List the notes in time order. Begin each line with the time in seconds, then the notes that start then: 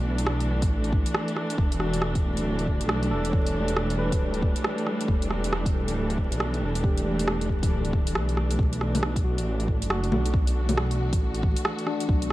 Already playing: B1 E3 A3 D4 E4 F#4
0.18 closed hi-hat
0.27 cross-stick
0.40 closed hi-hat
0.62 A1, kick, closed hi-hat
0.84 closed hi-hat
0.93 kick
1.06 closed hi-hat
1.15 cross-stick
1.28 closed hi-hat
1.36 cross-stick
1.50 closed hi-hat
1.58 E1, kick
1.72 closed hi-hat
1.80 F#4, cross-stick
1.93 closed hi-hat
2.02 cross-stick
2.15 kick, closed hi-hat
2.37 D1, closed hi-hat
2.59 closed hi-hat
2.66 G3, kick
2.81 B1, closed hi-hat
2.89 cross-stick
3.03 closed hi-hat
3.11 E1 A4
3.25 closed hi-hat
3.30 C#5, kick
3.47 closed hi-hat
3.68 closed hi-hat
3.77 cross-stick
3.90 closed hi-hat
3.99 B4
4.12 D1, kick, closed hi-hat
4.34 closed hi-hat
4.42 kick
4.56 closed hi-hat
4.64 cross-stick
4.78 closed hi-hat
4.87 cross-stick
5.01 closed hi-hat
5.08 E1, kick
5.22 closed hi-hat
5.31 cross-stick
5.44 closed hi-hat
5.53 cross-stick
5.66 kick, closed hi-hat
5.74 A4
5.88 D1, closed hi-hat
6.10 closed hi-hat
6.18 kick
6.31 B1, closed hi-hat
6.40 cross-stick
6.54 closed hi-hat
6.62 E1
6.75 closed hi-hat
6.84 G4, kick
6.97 closed hi-hat
7.19 closed hi-hat
7.28 cross-stick
7.41 closed hi-hat
7.49 kick
7.63 D1, kick, closed hi-hat
7.85 closed hi-hat
7.93 kick
8.07 closed hi-hat
8.15 B1, cross-stick
8.29 closed hi-hat
8.37 cross-stick
8.51 closed hi-hat
8.59 B1, kick
8.73 closed hi-hat
8.81 cross-stick
8.95 closed hi-hat, low bongo
9.03 cross-stick
9.16 kick, closed hi-hat
9.24 F#4
9.38 A1, closed hi-hat
9.60 closed hi-hat
9.68 kick
9.82 F#1 F#4, closed hi-hat
9.90 F#4, cross-stick
10.04 closed hi-hat
10.12 B1, low bongo
10.26 closed hi-hat
10.34 kick
10.47 closed hi-hat
10.69 closed hi-hat, low bongo
10.77 cross-stick
10.91 closed hi-hat
11.13 A1, kick, closed hi-hat
11.35 closed hi-hat
11.43 kick
11.57 closed hi-hat
11.65 cross-stick
11.79 closed hi-hat
11.87 D4, cross-stick
12.00 closed hi-hat
12.09 B1, kick
12.22 closed hi-hat